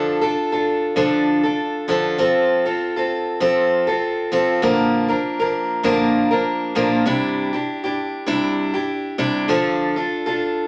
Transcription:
Already playing: D3 F3 D4 F4 A4
0.21 D4 F4 A4
0.52 D4 F4 A4
0.96 D3 F3 D4 F4 A4
1.43 D4 F4 A4
1.88 D3 F3 D4 F4 A4
2.18 F3 C4 F4 A4
2.65 C4 F4 A4
2.96 C4 F4 A4
3.40 F3 C4 F4 A4
3.87 C4 F4 A4
4.32 F3 C4 F4 A4
4.62 A#2 D3 F3 A#3 D4 A#4
5.08 F3 A#3 D4 A#4
5.40 F3 A#3 D4 A#4
5.83 A#2 D3 F3 A#3 D4 A#4
6.31 F3 A#3 D4 A#4
6.75 A#2 D3 F3 A#3 D4 A#4
7.06 C3 G3 D4 E4 G4
7.53 D4 E4 G4
7.84 D4 E4 G4
8.26 C3 G3 D4 E4 G4
8.74 D4 E4 G4
9.18 C3 G3 D4 E4 G4
9.48 D3 F3 D4 F4 A4
9.96 D4 F4 A4
10.26 D4 F4 A4

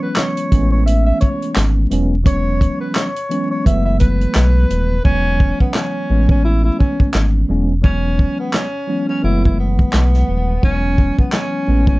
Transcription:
Already playing: E3 F#3 G#3 B3 C#4
0.02 B4
0.16 C#5, snare, clap, closed hi-hat
0.37 closed hi-hat
0.51 A1 E3 G#3 A3 B3 C#4, kick, closed hi-hat
0.72 C#5
0.86 E5, closed hi-hat
1.06 E5
1.20 C#5, kick, closed hi-hat
1.42 closed hi-hat
1.56 G#1, snare, clap, closed hi-hat
1.91 E1 E3 F#3 G#3 B3 C#4, closed hi-hat
2.23 E3 F#3 G#3 B3 C#4 C#5, kick, closed hi-hat
2.61 kick, closed hi-hat
2.81 B4
2.95 C#5, snare, clap, closed hi-hat
3.16 closed hi-hat
3.29 E3 F#3 G#3 B3 C#4, closed hi-hat
3.51 C#5
3.65 F#1 E3 F#3 G#3 A3 B3 E5, kick, closed hi-hat
3.85 E5
4.00 B4, kick, closed hi-hat
4.21 closed hi-hat
4.35 B1, snare, clap, closed hi-hat
4.70 D#1, closed hi-hat
5.04 E1 E3 F#3 G#3 B3 C#4, kick
5.40 kick
5.60 B3, kick
5.74 C#4, snare, clap
6.09 A1 E3 G#3 A3 B3 C#4
6.29 C#4, kick
6.44 E4
6.64 E4
6.79 C#4, kick
7.00 kick
7.14 G#1, snare, clap
7.49 E1 E3 F#3 G#3 B3 C#4
7.82 E3 F#3 G#3 B3 C#4, kick
8.19 kick
8.40 B3
8.53 C#4, snare, clap
8.87 E3 F#3 G#3 B3 C#4
9.08 C#4
9.23 F#1 E3 F#3 G#3 A3 B3 E4
9.45 E4, kick
9.59 B3
9.79 kick
9.93 B1, snare, clap
10.14 snare
10.28 D#1
10.62 E1 E3 F#3 G#3 B3 C#4, kick
10.98 kick
11.19 B3, kick
11.32 C#4, snare, clap
11.68 A1 E3 G#3 A3 B3 C#4
11.87 C#4, kick

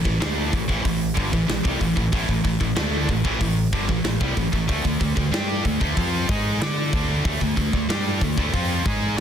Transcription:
0.05 A1 A2 E3, kick
0.20 D2 D3 A3 D4, snare, open hi-hat
0.52 A1 A2 E3, kick, open hi-hat
0.68 A1 A2 E3, kick
0.83 A1 A2 E3, kick, open hi-hat
1.15 G1 G2 D3, kick
1.32 A1 A2 E3, kick
1.48 A1 A2 E3, snare, open hi-hat
1.64 C2 C3 G3, kick
1.80 A1 A2 E3, kick, open hi-hat
1.96 A1 A2 E3, kick
2.12 A1 A2 E3, kick, open hi-hat
2.29 A1 A2 E3, kick
2.44 A1 A2 E3, kick, open hi-hat
2.60 A1 A2 E3, kick
2.75 D2 D3 A3 D4, snare, open hi-hat
3.08 A1 A2 E3, kick, open hi-hat
3.24 A1 A2 E3, kick
3.40 A1 A2 E3, kick, open hi-hat
3.73 G1 G2 D3, kick, open hi-hat
3.88 A1 A2 E3, kick
4.04 A1 A2 E3, snare, open hi-hat
4.20 C2 C3 G3, kick
4.36 A1 A2 E3, kick, open hi-hat
4.52 A1 A2 E3, kick
4.68 D2 D3 A3, kick, open hi-hat
4.84 D2 D3 A3, kick
5.00 D2 D3 A3, kick, open hi-hat
5.16 D2 D3 A3, kick
5.31 G2 G3 D4 G4, snare, open hi-hat
5.64 D2 D3 A3, kick, open hi-hat
5.80 D2 D3 A3, kick
5.97 F2 F3 C4 F4, kick, open hi-hat
6.29 G#2 G#3 D#4 G#4, kick, open hi-hat
6.61 D3 D4 A4 D5, snare, open hi-hat
6.93 D2 D3 A3 D4, kick, open hi-hat
7.25 D2 D3 A3, kick, open hi-hat
7.41 D2 D3 A3, kick
7.56 D2 D3 A3, kick, open hi-hat
7.73 D2 D3 A3, kick
7.89 G2 G3 D4 G4, snare, open hi-hat
8.21 D2 D3 A3, kick, open hi-hat
8.37 D2 D3 A3, kick
8.53 F2 F3 C4 F4, kick, open hi-hat
8.85 G#2 G#3 D#4 G#4, kick
9.17 D4

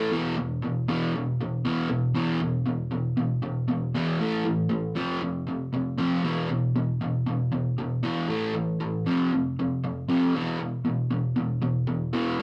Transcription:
Already playing: A2 E3 A3
0.12 E2 B2 E3
0.38 E2 B2
0.63 E2 B2
0.88 E2 B2 E3
1.15 E2 B2
1.41 E2 B2
1.65 E2 B2 E3
1.89 E2 B2
2.14 E2 B2 E3
2.41 E2 B2
2.66 E2 B2
2.91 E2 B2
3.17 E2 B2
3.42 E2 B2
3.68 E2 B2
3.94 E2 B2 E3
4.20 A2 E3 A3
4.45 A2 E3
4.70 A2 E3
4.96 F2 C3 F3
5.22 F2 C3
5.47 F2 C3
5.73 F2 C3
5.98 F2 C3 F3
6.24 E2 B2 E3
6.50 E2 B2
6.76 E2 B2
7.01 E2 B2
7.27 E2 B2
7.52 E2 B2
7.78 E2 B2
8.03 E2 B2 E3
8.29 A2 E3 A3
8.54 A2 E3
8.80 A2 E3
9.06 F2 C3 F3
9.32 F2 C3
9.59 F2 C3
9.84 F2 C3
10.09 F2 C3 F3
10.35 E2 B2 E3
10.59 E2 B2
10.85 E2 B2
11.11 E2 B2
11.36 E2 B2
11.62 E2 B2
11.87 E2 B2
12.13 E2 B2 E3

